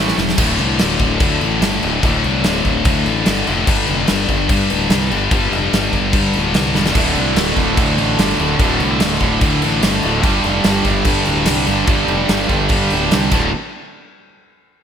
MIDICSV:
0, 0, Header, 1, 6, 480
1, 0, Start_track
1, 0, Tempo, 410678
1, 459, Time_signature, 4, 2, 24, 8
1, 17336, End_track
2, 0, Start_track
2, 0, Title_t, "Distorted electric guitar"
2, 0, Program_c, 0, 30
2, 0, Note_on_c, 0, 45, 87
2, 0, Note_on_c, 0, 52, 106
2, 0, Note_on_c, 0, 57, 115
2, 430, Note_off_c, 0, 45, 0
2, 439, Note_off_c, 0, 52, 0
2, 439, Note_on_c, 0, 38, 94
2, 445, Note_off_c, 0, 57, 0
2, 454, Note_on_c, 0, 45, 107
2, 466, Note_on_c, 0, 50, 124
2, 1395, Note_off_c, 0, 38, 0
2, 1400, Note_on_c, 0, 38, 79
2, 1402, Note_off_c, 0, 45, 0
2, 1414, Note_on_c, 0, 45, 80
2, 1421, Note_off_c, 0, 50, 0
2, 1425, Note_on_c, 0, 50, 86
2, 2347, Note_off_c, 0, 38, 0
2, 2361, Note_on_c, 0, 38, 114
2, 2362, Note_off_c, 0, 45, 0
2, 2368, Note_off_c, 0, 50, 0
2, 2379, Note_on_c, 0, 45, 107
2, 2388, Note_on_c, 0, 50, 106
2, 3315, Note_off_c, 0, 38, 0
2, 3324, Note_off_c, 0, 45, 0
2, 3328, Note_on_c, 0, 38, 84
2, 3329, Note_off_c, 0, 50, 0
2, 3346, Note_on_c, 0, 45, 83
2, 3363, Note_on_c, 0, 50, 88
2, 4278, Note_off_c, 0, 38, 0
2, 4287, Note_off_c, 0, 45, 0
2, 4289, Note_on_c, 0, 43, 109
2, 4295, Note_off_c, 0, 50, 0
2, 4311, Note_on_c, 0, 50, 103
2, 4319, Note_on_c, 0, 55, 109
2, 5237, Note_off_c, 0, 43, 0
2, 5241, Note_on_c, 0, 43, 83
2, 5249, Note_off_c, 0, 50, 0
2, 5261, Note_on_c, 0, 50, 83
2, 5266, Note_off_c, 0, 55, 0
2, 5270, Note_on_c, 0, 55, 91
2, 6179, Note_off_c, 0, 43, 0
2, 6193, Note_on_c, 0, 43, 97
2, 6198, Note_off_c, 0, 50, 0
2, 6204, Note_off_c, 0, 55, 0
2, 6213, Note_on_c, 0, 50, 113
2, 6218, Note_on_c, 0, 55, 109
2, 7137, Note_off_c, 0, 43, 0
2, 7148, Note_off_c, 0, 50, 0
2, 7151, Note_on_c, 0, 43, 68
2, 7161, Note_off_c, 0, 55, 0
2, 7162, Note_on_c, 0, 50, 77
2, 7179, Note_on_c, 0, 55, 88
2, 8107, Note_off_c, 0, 43, 0
2, 8113, Note_off_c, 0, 50, 0
2, 8118, Note_on_c, 0, 38, 104
2, 8121, Note_off_c, 0, 55, 0
2, 8134, Note_on_c, 0, 45, 109
2, 8146, Note_on_c, 0, 50, 108
2, 9077, Note_off_c, 0, 38, 0
2, 9078, Note_off_c, 0, 45, 0
2, 9082, Note_on_c, 0, 38, 84
2, 9097, Note_on_c, 0, 45, 82
2, 9103, Note_off_c, 0, 50, 0
2, 9108, Note_on_c, 0, 50, 90
2, 10032, Note_off_c, 0, 38, 0
2, 10039, Note_off_c, 0, 45, 0
2, 10044, Note_on_c, 0, 38, 98
2, 10045, Note_off_c, 0, 50, 0
2, 10066, Note_on_c, 0, 45, 115
2, 10074, Note_on_c, 0, 50, 108
2, 10992, Note_off_c, 0, 38, 0
2, 11003, Note_off_c, 0, 45, 0
2, 11008, Note_off_c, 0, 50, 0
2, 11010, Note_on_c, 0, 38, 89
2, 11021, Note_on_c, 0, 45, 83
2, 11035, Note_on_c, 0, 50, 84
2, 11955, Note_off_c, 0, 38, 0
2, 11961, Note_off_c, 0, 45, 0
2, 11964, Note_off_c, 0, 50, 0
2, 11966, Note_on_c, 0, 43, 114
2, 11978, Note_on_c, 0, 50, 105
2, 11998, Note_on_c, 0, 55, 118
2, 12915, Note_off_c, 0, 43, 0
2, 12919, Note_on_c, 0, 43, 75
2, 12920, Note_off_c, 0, 50, 0
2, 12940, Note_on_c, 0, 50, 89
2, 12948, Note_off_c, 0, 55, 0
2, 12953, Note_on_c, 0, 55, 100
2, 13861, Note_off_c, 0, 43, 0
2, 13872, Note_off_c, 0, 50, 0
2, 13876, Note_on_c, 0, 43, 108
2, 13886, Note_on_c, 0, 50, 114
2, 13887, Note_off_c, 0, 55, 0
2, 13899, Note_on_c, 0, 55, 121
2, 14830, Note_off_c, 0, 43, 0
2, 14835, Note_off_c, 0, 50, 0
2, 14842, Note_off_c, 0, 55, 0
2, 14848, Note_on_c, 0, 43, 87
2, 14854, Note_on_c, 0, 50, 84
2, 14872, Note_on_c, 0, 55, 85
2, 15559, Note_off_c, 0, 43, 0
2, 15563, Note_on_c, 0, 38, 99
2, 15570, Note_off_c, 0, 50, 0
2, 15579, Note_on_c, 0, 45, 110
2, 15580, Note_off_c, 0, 55, 0
2, 15584, Note_on_c, 0, 50, 113
2, 15760, Note_off_c, 0, 38, 0
2, 15768, Note_off_c, 0, 45, 0
2, 15771, Note_off_c, 0, 50, 0
2, 17336, End_track
3, 0, Start_track
3, 0, Title_t, "Distorted electric guitar"
3, 0, Program_c, 1, 30
3, 192, Note_on_c, 1, 45, 68
3, 197, Note_on_c, 1, 52, 85
3, 422, Note_off_c, 1, 45, 0
3, 424, Note_off_c, 1, 52, 0
3, 8819, Note_on_c, 1, 50, 86
3, 8847, Note_on_c, 1, 45, 80
3, 8868, Note_on_c, 1, 38, 68
3, 10012, Note_off_c, 1, 38, 0
3, 10020, Note_off_c, 1, 50, 0
3, 10034, Note_off_c, 1, 45, 0
3, 10736, Note_on_c, 1, 50, 100
3, 10765, Note_on_c, 1, 45, 89
3, 10789, Note_on_c, 1, 38, 76
3, 11931, Note_off_c, 1, 38, 0
3, 11938, Note_off_c, 1, 50, 0
3, 11953, Note_off_c, 1, 45, 0
3, 12651, Note_on_c, 1, 55, 90
3, 12684, Note_on_c, 1, 50, 85
3, 12703, Note_on_c, 1, 43, 76
3, 13833, Note_off_c, 1, 43, 0
3, 13857, Note_off_c, 1, 55, 0
3, 13866, Note_off_c, 1, 50, 0
3, 14575, Note_on_c, 1, 55, 89
3, 14605, Note_on_c, 1, 50, 91
3, 14627, Note_on_c, 1, 43, 86
3, 15540, Note_off_c, 1, 43, 0
3, 15551, Note_off_c, 1, 50, 0
3, 15554, Note_off_c, 1, 55, 0
3, 17336, End_track
4, 0, Start_track
4, 0, Title_t, "Distorted electric guitar"
4, 0, Program_c, 2, 30
4, 215, Note_on_c, 2, 52, 102
4, 216, Note_on_c, 2, 45, 74
4, 433, Note_off_c, 2, 52, 0
4, 434, Note_off_c, 2, 45, 0
4, 2139, Note_on_c, 2, 50, 95
4, 2149, Note_on_c, 2, 45, 92
4, 2166, Note_on_c, 2, 38, 82
4, 2347, Note_off_c, 2, 38, 0
4, 2364, Note_off_c, 2, 50, 0
4, 2370, Note_off_c, 2, 45, 0
4, 4064, Note_on_c, 2, 50, 120
4, 4080, Note_on_c, 2, 45, 99
4, 4092, Note_on_c, 2, 38, 88
4, 4287, Note_off_c, 2, 50, 0
4, 4291, Note_off_c, 2, 38, 0
4, 4294, Note_off_c, 2, 45, 0
4, 5970, Note_on_c, 2, 55, 104
4, 5987, Note_on_c, 2, 50, 107
4, 5993, Note_on_c, 2, 43, 84
4, 6191, Note_off_c, 2, 43, 0
4, 6198, Note_off_c, 2, 55, 0
4, 6200, Note_off_c, 2, 50, 0
4, 7890, Note_on_c, 2, 55, 99
4, 7911, Note_on_c, 2, 50, 91
4, 7928, Note_on_c, 2, 43, 74
4, 8117, Note_off_c, 2, 55, 0
4, 8128, Note_off_c, 2, 50, 0
4, 8136, Note_off_c, 2, 43, 0
4, 9823, Note_on_c, 2, 50, 114
4, 9836, Note_on_c, 2, 45, 97
4, 9858, Note_on_c, 2, 38, 87
4, 10043, Note_off_c, 2, 50, 0
4, 10049, Note_off_c, 2, 45, 0
4, 10051, Note_off_c, 2, 38, 0
4, 11735, Note_on_c, 2, 50, 95
4, 11748, Note_on_c, 2, 45, 98
4, 11761, Note_on_c, 2, 38, 81
4, 11956, Note_off_c, 2, 38, 0
4, 11958, Note_off_c, 2, 50, 0
4, 11965, Note_off_c, 2, 45, 0
4, 13638, Note_on_c, 2, 55, 93
4, 13653, Note_on_c, 2, 50, 95
4, 13666, Note_on_c, 2, 43, 85
4, 13852, Note_off_c, 2, 43, 0
4, 13870, Note_off_c, 2, 55, 0
4, 13872, Note_off_c, 2, 50, 0
4, 17336, End_track
5, 0, Start_track
5, 0, Title_t, "Fingered electric bass"
5, 0, Program_c, 3, 33
5, 0, Note_on_c, 3, 33, 96
5, 138, Note_off_c, 3, 33, 0
5, 210, Note_on_c, 3, 28, 91
5, 380, Note_off_c, 3, 28, 0
5, 455, Note_on_c, 3, 26, 97
5, 688, Note_off_c, 3, 26, 0
5, 697, Note_on_c, 3, 36, 90
5, 930, Note_off_c, 3, 36, 0
5, 945, Note_on_c, 3, 26, 93
5, 1159, Note_off_c, 3, 26, 0
5, 1166, Note_on_c, 3, 26, 98
5, 1404, Note_off_c, 3, 26, 0
5, 1413, Note_on_c, 3, 38, 83
5, 1647, Note_off_c, 3, 38, 0
5, 1656, Note_on_c, 3, 33, 80
5, 1883, Note_off_c, 3, 33, 0
5, 1890, Note_on_c, 3, 31, 99
5, 2125, Note_off_c, 3, 31, 0
5, 2139, Note_on_c, 3, 26, 88
5, 2370, Note_off_c, 3, 26, 0
5, 2381, Note_on_c, 3, 26, 104
5, 2611, Note_off_c, 3, 26, 0
5, 2621, Note_on_c, 3, 36, 102
5, 2851, Note_off_c, 3, 36, 0
5, 2860, Note_on_c, 3, 26, 101
5, 3090, Note_off_c, 3, 26, 0
5, 3101, Note_on_c, 3, 26, 98
5, 3331, Note_off_c, 3, 26, 0
5, 3338, Note_on_c, 3, 38, 95
5, 3565, Note_off_c, 3, 38, 0
5, 3572, Note_on_c, 3, 33, 77
5, 3806, Note_off_c, 3, 33, 0
5, 3823, Note_on_c, 3, 31, 93
5, 4052, Note_off_c, 3, 31, 0
5, 4068, Note_on_c, 3, 29, 101
5, 4291, Note_off_c, 3, 29, 0
5, 4298, Note_on_c, 3, 31, 104
5, 4529, Note_off_c, 3, 31, 0
5, 4550, Note_on_c, 3, 29, 92
5, 4775, Note_off_c, 3, 29, 0
5, 4787, Note_on_c, 3, 31, 98
5, 5010, Note_off_c, 3, 31, 0
5, 5017, Note_on_c, 3, 31, 92
5, 5248, Note_off_c, 3, 31, 0
5, 5256, Note_on_c, 3, 43, 81
5, 5487, Note_off_c, 3, 43, 0
5, 5504, Note_on_c, 3, 26, 80
5, 5727, Note_off_c, 3, 26, 0
5, 5734, Note_on_c, 3, 36, 97
5, 5966, Note_off_c, 3, 36, 0
5, 5984, Note_on_c, 3, 31, 101
5, 6206, Note_off_c, 3, 31, 0
5, 6213, Note_on_c, 3, 31, 108
5, 6445, Note_off_c, 3, 31, 0
5, 6451, Note_on_c, 3, 29, 100
5, 6684, Note_off_c, 3, 29, 0
5, 6699, Note_on_c, 3, 31, 95
5, 6923, Note_off_c, 3, 31, 0
5, 6930, Note_on_c, 3, 31, 91
5, 7163, Note_off_c, 3, 31, 0
5, 7170, Note_on_c, 3, 43, 89
5, 7400, Note_off_c, 3, 43, 0
5, 7407, Note_on_c, 3, 26, 78
5, 7632, Note_off_c, 3, 26, 0
5, 7639, Note_on_c, 3, 36, 97
5, 7877, Note_off_c, 3, 36, 0
5, 7885, Note_on_c, 3, 28, 89
5, 8120, Note_off_c, 3, 28, 0
5, 8134, Note_on_c, 3, 26, 108
5, 8356, Note_off_c, 3, 26, 0
5, 8363, Note_on_c, 3, 36, 88
5, 8592, Note_off_c, 3, 36, 0
5, 8599, Note_on_c, 3, 26, 94
5, 8836, Note_off_c, 3, 26, 0
5, 8845, Note_on_c, 3, 26, 94
5, 9079, Note_off_c, 3, 26, 0
5, 9094, Note_on_c, 3, 38, 76
5, 9305, Note_off_c, 3, 38, 0
5, 9312, Note_on_c, 3, 33, 77
5, 9552, Note_off_c, 3, 33, 0
5, 9560, Note_on_c, 3, 31, 97
5, 9797, Note_off_c, 3, 31, 0
5, 9804, Note_on_c, 3, 26, 95
5, 10038, Note_off_c, 3, 26, 0
5, 10045, Note_on_c, 3, 26, 103
5, 10275, Note_off_c, 3, 26, 0
5, 10282, Note_on_c, 3, 36, 101
5, 10517, Note_off_c, 3, 36, 0
5, 10532, Note_on_c, 3, 26, 107
5, 10762, Note_off_c, 3, 26, 0
5, 10768, Note_on_c, 3, 26, 92
5, 11000, Note_off_c, 3, 26, 0
5, 11006, Note_on_c, 3, 38, 84
5, 11239, Note_off_c, 3, 38, 0
5, 11258, Note_on_c, 3, 33, 81
5, 11485, Note_off_c, 3, 33, 0
5, 11499, Note_on_c, 3, 31, 97
5, 11726, Note_off_c, 3, 31, 0
5, 11739, Note_on_c, 3, 26, 97
5, 11958, Note_off_c, 3, 26, 0
5, 11965, Note_on_c, 3, 31, 97
5, 12199, Note_off_c, 3, 31, 0
5, 12204, Note_on_c, 3, 29, 103
5, 12438, Note_off_c, 3, 29, 0
5, 12443, Note_on_c, 3, 31, 103
5, 12677, Note_off_c, 3, 31, 0
5, 12686, Note_on_c, 3, 31, 97
5, 12919, Note_off_c, 3, 31, 0
5, 12925, Note_on_c, 3, 43, 86
5, 13158, Note_off_c, 3, 43, 0
5, 13167, Note_on_c, 3, 26, 80
5, 13390, Note_off_c, 3, 26, 0
5, 13397, Note_on_c, 3, 36, 101
5, 13631, Note_off_c, 3, 36, 0
5, 13638, Note_on_c, 3, 31, 92
5, 13875, Note_off_c, 3, 31, 0
5, 13886, Note_on_c, 3, 31, 93
5, 14113, Note_off_c, 3, 31, 0
5, 14120, Note_on_c, 3, 29, 96
5, 14356, Note_off_c, 3, 29, 0
5, 14366, Note_on_c, 3, 31, 96
5, 14600, Note_off_c, 3, 31, 0
5, 14605, Note_on_c, 3, 31, 87
5, 14840, Note_off_c, 3, 31, 0
5, 14848, Note_on_c, 3, 43, 93
5, 15081, Note_off_c, 3, 43, 0
5, 15103, Note_on_c, 3, 26, 85
5, 15329, Note_off_c, 3, 26, 0
5, 15350, Note_on_c, 3, 36, 96
5, 15566, Note_off_c, 3, 36, 0
5, 15573, Note_on_c, 3, 26, 88
5, 15796, Note_off_c, 3, 26, 0
5, 17336, End_track
6, 0, Start_track
6, 0, Title_t, "Drums"
6, 93, Note_on_c, 9, 38, 68
6, 209, Note_off_c, 9, 38, 0
6, 209, Note_on_c, 9, 38, 91
6, 326, Note_off_c, 9, 38, 0
6, 336, Note_on_c, 9, 38, 90
6, 442, Note_on_c, 9, 49, 127
6, 442, Note_on_c, 9, 57, 98
6, 445, Note_on_c, 9, 36, 120
6, 453, Note_off_c, 9, 38, 0
6, 559, Note_off_c, 9, 49, 0
6, 559, Note_off_c, 9, 57, 0
6, 562, Note_off_c, 9, 36, 0
6, 683, Note_on_c, 9, 57, 69
6, 800, Note_off_c, 9, 57, 0
6, 922, Note_on_c, 9, 57, 97
6, 930, Note_on_c, 9, 38, 106
6, 1038, Note_off_c, 9, 57, 0
6, 1047, Note_off_c, 9, 38, 0
6, 1158, Note_on_c, 9, 57, 64
6, 1166, Note_on_c, 9, 36, 90
6, 1275, Note_off_c, 9, 57, 0
6, 1282, Note_off_c, 9, 36, 0
6, 1402, Note_on_c, 9, 57, 95
6, 1408, Note_on_c, 9, 36, 127
6, 1519, Note_off_c, 9, 57, 0
6, 1525, Note_off_c, 9, 36, 0
6, 1649, Note_on_c, 9, 57, 68
6, 1766, Note_off_c, 9, 57, 0
6, 1890, Note_on_c, 9, 57, 92
6, 1899, Note_on_c, 9, 38, 127
6, 2007, Note_off_c, 9, 57, 0
6, 2015, Note_off_c, 9, 38, 0
6, 2135, Note_on_c, 9, 57, 65
6, 2251, Note_off_c, 9, 57, 0
6, 2372, Note_on_c, 9, 57, 90
6, 2375, Note_on_c, 9, 36, 126
6, 2489, Note_off_c, 9, 57, 0
6, 2491, Note_off_c, 9, 36, 0
6, 2617, Note_on_c, 9, 57, 64
6, 2734, Note_off_c, 9, 57, 0
6, 2849, Note_on_c, 9, 57, 81
6, 2857, Note_on_c, 9, 38, 102
6, 2966, Note_off_c, 9, 57, 0
6, 2974, Note_off_c, 9, 38, 0
6, 3097, Note_on_c, 9, 36, 72
6, 3098, Note_on_c, 9, 57, 59
6, 3213, Note_off_c, 9, 36, 0
6, 3214, Note_off_c, 9, 57, 0
6, 3329, Note_on_c, 9, 57, 93
6, 3336, Note_on_c, 9, 36, 127
6, 3446, Note_off_c, 9, 57, 0
6, 3453, Note_off_c, 9, 36, 0
6, 3574, Note_on_c, 9, 57, 70
6, 3691, Note_off_c, 9, 57, 0
6, 3806, Note_on_c, 9, 57, 96
6, 3815, Note_on_c, 9, 38, 127
6, 3923, Note_off_c, 9, 57, 0
6, 3931, Note_off_c, 9, 38, 0
6, 4055, Note_on_c, 9, 57, 68
6, 4172, Note_off_c, 9, 57, 0
6, 4291, Note_on_c, 9, 57, 103
6, 4294, Note_on_c, 9, 36, 127
6, 4407, Note_off_c, 9, 57, 0
6, 4410, Note_off_c, 9, 36, 0
6, 4525, Note_on_c, 9, 57, 68
6, 4642, Note_off_c, 9, 57, 0
6, 4761, Note_on_c, 9, 57, 94
6, 4769, Note_on_c, 9, 38, 110
6, 4878, Note_off_c, 9, 57, 0
6, 4886, Note_off_c, 9, 38, 0
6, 5011, Note_on_c, 9, 36, 84
6, 5012, Note_on_c, 9, 57, 65
6, 5128, Note_off_c, 9, 36, 0
6, 5129, Note_off_c, 9, 57, 0
6, 5251, Note_on_c, 9, 36, 126
6, 5253, Note_on_c, 9, 57, 106
6, 5368, Note_off_c, 9, 36, 0
6, 5370, Note_off_c, 9, 57, 0
6, 5492, Note_on_c, 9, 57, 74
6, 5609, Note_off_c, 9, 57, 0
6, 5725, Note_on_c, 9, 57, 94
6, 5733, Note_on_c, 9, 38, 127
6, 5842, Note_off_c, 9, 57, 0
6, 5850, Note_off_c, 9, 38, 0
6, 5978, Note_on_c, 9, 57, 66
6, 6095, Note_off_c, 9, 57, 0
6, 6210, Note_on_c, 9, 36, 127
6, 6213, Note_on_c, 9, 57, 94
6, 6327, Note_off_c, 9, 36, 0
6, 6330, Note_off_c, 9, 57, 0
6, 6460, Note_on_c, 9, 57, 60
6, 6577, Note_off_c, 9, 57, 0
6, 6699, Note_on_c, 9, 57, 82
6, 6707, Note_on_c, 9, 38, 112
6, 6816, Note_off_c, 9, 57, 0
6, 6824, Note_off_c, 9, 38, 0
6, 6929, Note_on_c, 9, 36, 78
6, 6932, Note_on_c, 9, 57, 64
6, 7046, Note_off_c, 9, 36, 0
6, 7049, Note_off_c, 9, 57, 0
6, 7163, Note_on_c, 9, 57, 98
6, 7167, Note_on_c, 9, 36, 125
6, 7280, Note_off_c, 9, 57, 0
6, 7284, Note_off_c, 9, 36, 0
6, 7404, Note_on_c, 9, 57, 69
6, 7520, Note_off_c, 9, 57, 0
6, 7646, Note_on_c, 9, 57, 103
6, 7654, Note_on_c, 9, 38, 127
6, 7763, Note_off_c, 9, 57, 0
6, 7771, Note_off_c, 9, 38, 0
6, 7892, Note_on_c, 9, 38, 76
6, 8009, Note_off_c, 9, 38, 0
6, 8014, Note_on_c, 9, 38, 99
6, 8126, Note_on_c, 9, 36, 127
6, 8126, Note_on_c, 9, 57, 116
6, 8131, Note_off_c, 9, 38, 0
6, 8242, Note_off_c, 9, 36, 0
6, 8243, Note_off_c, 9, 57, 0
6, 8364, Note_on_c, 9, 57, 73
6, 8481, Note_off_c, 9, 57, 0
6, 8605, Note_on_c, 9, 57, 103
6, 8613, Note_on_c, 9, 38, 115
6, 8721, Note_off_c, 9, 57, 0
6, 8730, Note_off_c, 9, 38, 0
6, 8840, Note_on_c, 9, 57, 67
6, 8844, Note_on_c, 9, 36, 80
6, 8957, Note_off_c, 9, 57, 0
6, 8961, Note_off_c, 9, 36, 0
6, 9087, Note_on_c, 9, 36, 127
6, 9088, Note_on_c, 9, 57, 102
6, 9203, Note_off_c, 9, 36, 0
6, 9205, Note_off_c, 9, 57, 0
6, 9329, Note_on_c, 9, 57, 75
6, 9446, Note_off_c, 9, 57, 0
6, 9568, Note_on_c, 9, 57, 103
6, 9576, Note_on_c, 9, 38, 127
6, 9685, Note_off_c, 9, 57, 0
6, 9693, Note_off_c, 9, 38, 0
6, 9813, Note_on_c, 9, 57, 64
6, 9930, Note_off_c, 9, 57, 0
6, 10045, Note_on_c, 9, 57, 95
6, 10046, Note_on_c, 9, 36, 117
6, 10162, Note_off_c, 9, 57, 0
6, 10163, Note_off_c, 9, 36, 0
6, 10285, Note_on_c, 9, 57, 68
6, 10402, Note_off_c, 9, 57, 0
6, 10519, Note_on_c, 9, 57, 92
6, 10527, Note_on_c, 9, 38, 120
6, 10635, Note_off_c, 9, 57, 0
6, 10644, Note_off_c, 9, 38, 0
6, 10754, Note_on_c, 9, 57, 62
6, 10763, Note_on_c, 9, 36, 81
6, 10871, Note_off_c, 9, 57, 0
6, 10880, Note_off_c, 9, 36, 0
6, 10998, Note_on_c, 9, 57, 93
6, 11004, Note_on_c, 9, 36, 117
6, 11114, Note_off_c, 9, 57, 0
6, 11121, Note_off_c, 9, 36, 0
6, 11242, Note_on_c, 9, 57, 75
6, 11359, Note_off_c, 9, 57, 0
6, 11483, Note_on_c, 9, 57, 104
6, 11491, Note_on_c, 9, 38, 127
6, 11600, Note_off_c, 9, 57, 0
6, 11608, Note_off_c, 9, 38, 0
6, 11722, Note_on_c, 9, 57, 67
6, 11839, Note_off_c, 9, 57, 0
6, 11961, Note_on_c, 9, 57, 88
6, 11963, Note_on_c, 9, 36, 122
6, 12078, Note_off_c, 9, 57, 0
6, 12080, Note_off_c, 9, 36, 0
6, 12199, Note_on_c, 9, 57, 75
6, 12315, Note_off_c, 9, 57, 0
6, 12434, Note_on_c, 9, 57, 92
6, 12442, Note_on_c, 9, 38, 114
6, 12551, Note_off_c, 9, 57, 0
6, 12559, Note_off_c, 9, 38, 0
6, 12677, Note_on_c, 9, 57, 68
6, 12680, Note_on_c, 9, 36, 86
6, 12794, Note_off_c, 9, 57, 0
6, 12797, Note_off_c, 9, 36, 0
6, 12911, Note_on_c, 9, 57, 102
6, 12919, Note_on_c, 9, 36, 121
6, 13028, Note_off_c, 9, 57, 0
6, 13035, Note_off_c, 9, 36, 0
6, 13153, Note_on_c, 9, 57, 74
6, 13270, Note_off_c, 9, 57, 0
6, 13388, Note_on_c, 9, 57, 114
6, 13397, Note_on_c, 9, 38, 124
6, 13505, Note_off_c, 9, 57, 0
6, 13514, Note_off_c, 9, 38, 0
6, 13637, Note_on_c, 9, 57, 73
6, 13754, Note_off_c, 9, 57, 0
6, 13874, Note_on_c, 9, 57, 91
6, 13881, Note_on_c, 9, 36, 127
6, 13991, Note_off_c, 9, 57, 0
6, 13998, Note_off_c, 9, 36, 0
6, 14121, Note_on_c, 9, 57, 62
6, 14238, Note_off_c, 9, 57, 0
6, 14360, Note_on_c, 9, 57, 86
6, 14368, Note_on_c, 9, 38, 108
6, 14477, Note_off_c, 9, 57, 0
6, 14485, Note_off_c, 9, 38, 0
6, 14599, Note_on_c, 9, 57, 59
6, 14603, Note_on_c, 9, 36, 88
6, 14716, Note_off_c, 9, 57, 0
6, 14720, Note_off_c, 9, 36, 0
6, 14830, Note_on_c, 9, 57, 95
6, 14842, Note_on_c, 9, 36, 115
6, 14947, Note_off_c, 9, 57, 0
6, 14959, Note_off_c, 9, 36, 0
6, 15081, Note_on_c, 9, 57, 74
6, 15197, Note_off_c, 9, 57, 0
6, 15325, Note_on_c, 9, 57, 95
6, 15333, Note_on_c, 9, 38, 127
6, 15442, Note_off_c, 9, 57, 0
6, 15450, Note_off_c, 9, 38, 0
6, 15561, Note_on_c, 9, 49, 93
6, 15567, Note_on_c, 9, 36, 115
6, 15678, Note_off_c, 9, 49, 0
6, 15684, Note_off_c, 9, 36, 0
6, 17336, End_track
0, 0, End_of_file